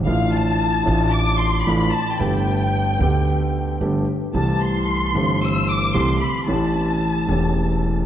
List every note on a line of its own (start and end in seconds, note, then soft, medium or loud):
0.01 0.07 G#1 medium
0.05 0.83 A1 medium
0.05 0.83 A2 medium
0.05 0.83 A3 medium
0.05 0.83 D4 medium
0.05 0.82 E4 medium
0.05 0.32 F5 medium
0.09 0.84 F4 medium
0.34 1.14 A5 medium
0.84 1.62 A1 medium
0.84 1.63 A1 loud
0.84 1.62 A2 medium
0.84 1.62 A3 medium
0.84 1.63 D4 medium
0.84 1.61 E4 medium
0.88 1.64 F4 medium
1.12 1.39 D6 loud
1.38 1.66 C6 medium
1.64 1.90 A1 medium
1.64 1.89 A2 medium
1.64 1.89 E3 medium
1.64 1.89 A3 medium
1.64 1.90 D4 medium
1.64 1.90 F4 medium
1.64 1.92 B5 medium
1.92 2.19 A5 medium
2.18 2.96 G1 medium
2.18 2.96 G2 medium
2.18 2.95 D3 medium
2.18 2.96 A3 medium
2.18 2.96 B3 medium
2.18 2.97 G4 medium
2.18 3.80 G5 medium
2.98 3.77 D2 medium
2.98 3.77 D3 medium
2.98 3.76 A3 medium
2.98 3.77 B3 medium
3.02 3.78 G4 medium
3.81 4.04 G1 medium
3.81 4.04 G2 medium
3.81 4.04 D3 medium
3.81 4.04 A3 medium
3.81 4.04 B3 medium
3.81 4.04 G4 medium
4.33 5.11 C2 medium
4.33 5.11 C3 medium
4.33 5.10 E3 medium
4.33 5.11 A3 medium
4.33 5.11 C4 medium
4.33 4.60 A5 medium
4.37 5.12 G4 medium
4.62 5.42 C6 medium
5.13 5.91 G1 medium
5.13 5.91 G2 medium
5.13 5.90 E3 medium
5.13 5.91 A3 medium
5.13 5.91 C4 medium
5.13 5.92 G4 medium
5.44 5.70 E6 loud
5.69 5.95 D6 loud
5.94 6.17 C2 medium
5.94 6.18 C2 loud
5.94 6.17 C3 medium
5.94 6.17 E3 medium
5.94 6.17 A3 medium
5.94 6.17 C4 medium
5.94 6.17 G4 medium
5.94 6.22 C6 medium
6.21 6.48 B5 medium
6.46 7.24 A1 medium
6.46 7.25 A1 medium
6.46 7.24 A2 medium
6.46 7.23 E3 medium
6.46 7.24 A3 medium
6.46 7.25 C#4 medium
6.46 8.04 A5 medium
6.51 7.25 G4 medium
7.27 8.04 E1 medium
7.27 8.04 E2 medium
7.27 8.03 E3 medium
7.27 8.04 A3 medium
7.27 8.05 C#4 medium
7.27 8.05 G4 medium